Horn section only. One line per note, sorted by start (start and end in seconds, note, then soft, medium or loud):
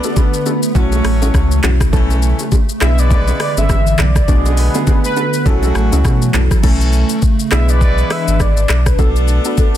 0.00 0.44 B3 medium
0.00 0.44 D4 medium
0.00 0.44 A4 medium
0.00 0.44 D5 medium
0.75 1.62 A3 medium
0.75 1.62 C#4 medium
0.75 1.62 F#4 medium
0.75 1.62 C#5 loud
1.93 2.50 E3 medium
1.93 2.50 A3 medium
1.93 2.50 C#4 medium
1.93 2.50 A4 medium
2.81 3.96 G#3 medium
2.81 3.96 B3 medium
2.81 3.96 E4 medium
2.81 3.96 B4 medium
4.28 5.15 D3 medium
4.28 5.15 G#3 medium
4.28 5.15 B3 medium
4.28 5.15 G#4 medium
5.46 6.32 C#3 medium
5.46 6.32 F#3 medium
5.46 6.32 A3 medium
5.46 6.32 F#4 medium
6.63 7.21 E3 medium
6.63 7.21 A3 medium
6.63 7.21 C#4 medium
6.63 7.21 A4 medium
7.52 8.67 G#3 medium
7.52 8.67 B3 medium
7.52 8.67 E4 medium
7.52 8.67 B4 medium
8.99 9.77 B3 medium
8.99 9.77 D4 medium
8.99 9.77 A4 medium
8.99 9.77 D5 medium